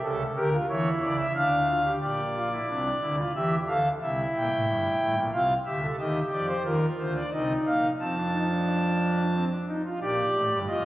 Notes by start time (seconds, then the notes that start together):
0.03 C#2 C#3 A4
0.36 D2 D3 G4 A#4
0.52 F4
0.69 E2 E3 E4 C#5
1.02 C#2 C#3 D5
1.19 E5
1.35 D2 D3 D4 F5
1.68 F4
1.84 G4
2.01 A#1 A#2 G4 D5
2.34 F4
2.52 E4
2.69 C2 C3 D4
3.02 D2 D3 E4
3.18 F4
3.35 E2 E3 G4 E5
3.67 D2 D3 A4 F5
4.01 C2 C3 E4 E5
4.35 A#1 A#2 G5
4.51 A1 A2
4.67 G1 G2
5.00 A1 A2
5.16 A#1 A#2
5.33 C2 C3 F4 F5
5.66 D2 D3 G4 E5
5.82 A4
5.98 D#2 D#3 G4 D#5
6.32 F2 F3 D5
6.49 C5
6.65 D#2 D#3 F4 A#4
6.99 D2 D3 C5
7.16 D5
7.32 C2 C3 D#4 D#5
7.66 A#1 A#2 F5
8.00 F2 F3 C4 A5
8.16 D4
8.33 D#4
8.50 D4
9.34 C4
9.51 D4
9.68 D#4
9.85 F4
10.02 A#1 A#2 G4 D5
10.35 A1 A2
10.52 G1 G2
10.67 F1 F2 F4 D#5